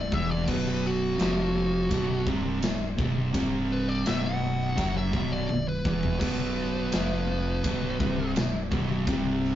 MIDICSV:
0, 0, Header, 1, 5, 480
1, 0, Start_track
1, 0, Tempo, 715990
1, 328, Time_signature, 4, 2, 24, 8
1, 6404, End_track
2, 0, Start_track
2, 0, Title_t, "Lead electric guitar"
2, 0, Program_c, 0, 29
2, 0, Note_on_c, 0, 74, 82
2, 91, Note_off_c, 0, 74, 0
2, 91, Note_on_c, 0, 76, 99
2, 206, Note_off_c, 0, 76, 0
2, 209, Note_on_c, 0, 74, 89
2, 328, Note_off_c, 0, 74, 0
2, 328, Note_on_c, 0, 71, 89
2, 561, Note_off_c, 0, 71, 0
2, 580, Note_on_c, 0, 66, 104
2, 1506, Note_off_c, 0, 66, 0
2, 2498, Note_on_c, 0, 71, 89
2, 2605, Note_off_c, 0, 71, 0
2, 2605, Note_on_c, 0, 74, 83
2, 2725, Note_off_c, 0, 74, 0
2, 2725, Note_on_c, 0, 76, 94
2, 2842, Note_off_c, 0, 76, 0
2, 2846, Note_on_c, 0, 78, 94
2, 3311, Note_off_c, 0, 78, 0
2, 3333, Note_on_c, 0, 76, 96
2, 3563, Note_off_c, 0, 76, 0
2, 3567, Note_on_c, 0, 74, 98
2, 3799, Note_off_c, 0, 74, 0
2, 3810, Note_on_c, 0, 71, 80
2, 4146, Note_off_c, 0, 71, 0
2, 4154, Note_on_c, 0, 71, 98
2, 5575, Note_off_c, 0, 71, 0
2, 6404, End_track
3, 0, Start_track
3, 0, Title_t, "Distorted electric guitar"
3, 0, Program_c, 1, 30
3, 82, Note_on_c, 1, 40, 90
3, 85, Note_on_c, 1, 52, 89
3, 318, Note_off_c, 1, 40, 0
3, 319, Note_off_c, 1, 52, 0
3, 324, Note_on_c, 1, 35, 89
3, 332, Note_on_c, 1, 47, 106
3, 798, Note_off_c, 1, 35, 0
3, 802, Note_off_c, 1, 47, 0
3, 802, Note_on_c, 1, 41, 93
3, 808, Note_on_c, 1, 53, 111
3, 1268, Note_off_c, 1, 41, 0
3, 1270, Note_on_c, 1, 35, 99
3, 1274, Note_off_c, 1, 53, 0
3, 1277, Note_on_c, 1, 47, 104
3, 1511, Note_off_c, 1, 35, 0
3, 1514, Note_off_c, 1, 47, 0
3, 1519, Note_on_c, 1, 36, 96
3, 1528, Note_on_c, 1, 48, 105
3, 1753, Note_off_c, 1, 36, 0
3, 1756, Note_on_c, 1, 35, 70
3, 1760, Note_off_c, 1, 48, 0
3, 1953, Note_off_c, 1, 35, 0
3, 1992, Note_on_c, 1, 35, 89
3, 1998, Note_on_c, 1, 47, 103
3, 2230, Note_off_c, 1, 35, 0
3, 2231, Note_off_c, 1, 47, 0
3, 2232, Note_on_c, 1, 36, 98
3, 2234, Note_on_c, 1, 48, 107
3, 2712, Note_off_c, 1, 36, 0
3, 2713, Note_off_c, 1, 48, 0
3, 2720, Note_on_c, 1, 35, 96
3, 2726, Note_on_c, 1, 47, 100
3, 3196, Note_off_c, 1, 35, 0
3, 3198, Note_off_c, 1, 47, 0
3, 3202, Note_on_c, 1, 42, 94
3, 3206, Note_on_c, 1, 54, 103
3, 3434, Note_off_c, 1, 42, 0
3, 3437, Note_on_c, 1, 35, 106
3, 3438, Note_off_c, 1, 54, 0
3, 3441, Note_on_c, 1, 47, 107
3, 3674, Note_off_c, 1, 35, 0
3, 3676, Note_off_c, 1, 47, 0
3, 3683, Note_on_c, 1, 35, 67
3, 3876, Note_off_c, 1, 35, 0
3, 3922, Note_on_c, 1, 40, 83
3, 3929, Note_on_c, 1, 52, 101
3, 4157, Note_off_c, 1, 40, 0
3, 4160, Note_on_c, 1, 35, 103
3, 4161, Note_off_c, 1, 52, 0
3, 4168, Note_on_c, 1, 47, 106
3, 4636, Note_off_c, 1, 35, 0
3, 4640, Note_off_c, 1, 47, 0
3, 4642, Note_on_c, 1, 41, 93
3, 4644, Note_on_c, 1, 53, 101
3, 5117, Note_off_c, 1, 41, 0
3, 5119, Note_off_c, 1, 53, 0
3, 5126, Note_on_c, 1, 35, 96
3, 5133, Note_on_c, 1, 47, 127
3, 5352, Note_off_c, 1, 35, 0
3, 5354, Note_on_c, 1, 36, 99
3, 5357, Note_off_c, 1, 47, 0
3, 5359, Note_on_c, 1, 48, 122
3, 5594, Note_off_c, 1, 36, 0
3, 5596, Note_off_c, 1, 48, 0
3, 5604, Note_on_c, 1, 35, 75
3, 5798, Note_off_c, 1, 35, 0
3, 5841, Note_on_c, 1, 35, 92
3, 5847, Note_on_c, 1, 47, 93
3, 6075, Note_off_c, 1, 35, 0
3, 6078, Note_off_c, 1, 47, 0
3, 6078, Note_on_c, 1, 36, 96
3, 6081, Note_on_c, 1, 48, 104
3, 6404, Note_off_c, 1, 36, 0
3, 6404, Note_off_c, 1, 48, 0
3, 6404, End_track
4, 0, Start_track
4, 0, Title_t, "Analog synth bass"
4, 0, Program_c, 2, 38
4, 0, Note_on_c, 2, 23, 90
4, 76, Note_off_c, 2, 23, 0
4, 80, Note_on_c, 2, 28, 93
4, 307, Note_off_c, 2, 28, 0
4, 321, Note_on_c, 2, 23, 94
4, 777, Note_off_c, 2, 23, 0
4, 808, Note_on_c, 2, 29, 97
4, 1260, Note_off_c, 2, 29, 0
4, 1284, Note_on_c, 2, 23, 106
4, 1508, Note_off_c, 2, 23, 0
4, 1524, Note_on_c, 2, 24, 105
4, 1748, Note_off_c, 2, 24, 0
4, 1779, Note_on_c, 2, 23, 80
4, 1996, Note_off_c, 2, 23, 0
4, 2003, Note_on_c, 2, 23, 103
4, 2228, Note_off_c, 2, 23, 0
4, 2241, Note_on_c, 2, 24, 97
4, 2696, Note_off_c, 2, 24, 0
4, 2736, Note_on_c, 2, 23, 100
4, 3184, Note_off_c, 2, 23, 0
4, 3207, Note_on_c, 2, 30, 92
4, 3430, Note_off_c, 2, 30, 0
4, 3445, Note_on_c, 2, 23, 103
4, 3669, Note_off_c, 2, 23, 0
4, 3705, Note_on_c, 2, 23, 81
4, 3919, Note_off_c, 2, 23, 0
4, 3925, Note_on_c, 2, 28, 94
4, 4149, Note_off_c, 2, 28, 0
4, 4164, Note_on_c, 2, 23, 92
4, 4619, Note_off_c, 2, 23, 0
4, 4656, Note_on_c, 2, 29, 89
4, 5105, Note_off_c, 2, 29, 0
4, 5127, Note_on_c, 2, 23, 100
4, 5350, Note_off_c, 2, 23, 0
4, 5366, Note_on_c, 2, 24, 109
4, 5590, Note_off_c, 2, 24, 0
4, 5607, Note_on_c, 2, 23, 75
4, 5831, Note_off_c, 2, 23, 0
4, 5846, Note_on_c, 2, 23, 102
4, 6070, Note_off_c, 2, 23, 0
4, 6084, Note_on_c, 2, 24, 94
4, 6404, Note_off_c, 2, 24, 0
4, 6404, End_track
5, 0, Start_track
5, 0, Title_t, "Drums"
5, 81, Note_on_c, 9, 36, 118
5, 148, Note_off_c, 9, 36, 0
5, 319, Note_on_c, 9, 36, 99
5, 319, Note_on_c, 9, 49, 92
5, 386, Note_off_c, 9, 36, 0
5, 386, Note_off_c, 9, 49, 0
5, 801, Note_on_c, 9, 53, 71
5, 810, Note_on_c, 9, 38, 107
5, 868, Note_off_c, 9, 53, 0
5, 877, Note_off_c, 9, 38, 0
5, 1279, Note_on_c, 9, 36, 108
5, 1280, Note_on_c, 9, 53, 77
5, 1346, Note_off_c, 9, 36, 0
5, 1347, Note_off_c, 9, 53, 0
5, 1520, Note_on_c, 9, 36, 113
5, 1587, Note_off_c, 9, 36, 0
5, 1759, Note_on_c, 9, 53, 85
5, 1769, Note_on_c, 9, 38, 118
5, 1826, Note_off_c, 9, 53, 0
5, 1836, Note_off_c, 9, 38, 0
5, 2001, Note_on_c, 9, 36, 116
5, 2068, Note_off_c, 9, 36, 0
5, 2241, Note_on_c, 9, 36, 104
5, 2243, Note_on_c, 9, 53, 70
5, 2308, Note_off_c, 9, 36, 0
5, 2310, Note_off_c, 9, 53, 0
5, 2721, Note_on_c, 9, 53, 70
5, 2730, Note_on_c, 9, 38, 119
5, 2788, Note_off_c, 9, 53, 0
5, 2797, Note_off_c, 9, 38, 0
5, 3201, Note_on_c, 9, 36, 108
5, 3202, Note_on_c, 9, 53, 77
5, 3269, Note_off_c, 9, 36, 0
5, 3269, Note_off_c, 9, 53, 0
5, 3441, Note_on_c, 9, 36, 108
5, 3508, Note_off_c, 9, 36, 0
5, 3682, Note_on_c, 9, 48, 76
5, 3749, Note_off_c, 9, 48, 0
5, 3923, Note_on_c, 9, 36, 105
5, 3990, Note_off_c, 9, 36, 0
5, 4042, Note_on_c, 9, 43, 96
5, 4109, Note_off_c, 9, 43, 0
5, 4161, Note_on_c, 9, 57, 87
5, 4163, Note_on_c, 9, 36, 111
5, 4228, Note_off_c, 9, 57, 0
5, 4230, Note_off_c, 9, 36, 0
5, 4640, Note_on_c, 9, 53, 89
5, 4650, Note_on_c, 9, 38, 112
5, 4707, Note_off_c, 9, 53, 0
5, 4717, Note_off_c, 9, 38, 0
5, 5122, Note_on_c, 9, 53, 80
5, 5124, Note_on_c, 9, 36, 110
5, 5189, Note_off_c, 9, 53, 0
5, 5191, Note_off_c, 9, 36, 0
5, 5364, Note_on_c, 9, 36, 114
5, 5431, Note_off_c, 9, 36, 0
5, 5603, Note_on_c, 9, 53, 80
5, 5613, Note_on_c, 9, 38, 122
5, 5671, Note_off_c, 9, 53, 0
5, 5680, Note_off_c, 9, 38, 0
5, 5844, Note_on_c, 9, 36, 114
5, 5911, Note_off_c, 9, 36, 0
5, 6082, Note_on_c, 9, 36, 107
5, 6082, Note_on_c, 9, 53, 68
5, 6149, Note_off_c, 9, 36, 0
5, 6149, Note_off_c, 9, 53, 0
5, 6329, Note_on_c, 9, 38, 33
5, 6396, Note_off_c, 9, 38, 0
5, 6404, End_track
0, 0, End_of_file